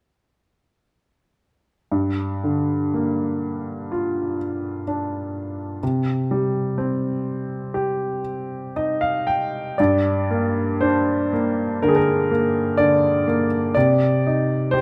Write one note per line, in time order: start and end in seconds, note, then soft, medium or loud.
1.92 5.78 G2 soft
2.44 4.35 D3 soft
2.94 4.83 A#3 soft
3.92 5.79 F4 soft
4.88 5.80 D4 soft
5.83 9.75 C3 soft
6.31 8.21 G3 soft
6.78 8.72 C4 soft
7.74 9.75 G4 soft
8.76 9.76 D#4 soft
8.76 9.00 D#5 soft
9.01 9.25 F5 soft
9.27 9.75 G5 soft
9.78 13.72 G2 soft
9.78 10.85 D5 medium
10.30 11.31 A#3 soft
10.81 12.75 D4 soft
10.81 11.78 C5 medium
11.33 12.29 A#3 soft
11.82 12.77 D3 soft
11.82 11.89 A#4 medium
11.88 11.96 G#4 soft
11.96 12.74 A#4 medium
12.31 13.26 A#3 soft
12.78 13.73 D3 soft
12.78 13.46 D5 medium
13.27 13.74 A#3 soft
13.75 14.81 C3 soft
13.75 14.75 D5 medium
14.27 14.81 D#4 soft
14.71 14.81 G4 soft
14.71 14.81 C5 medium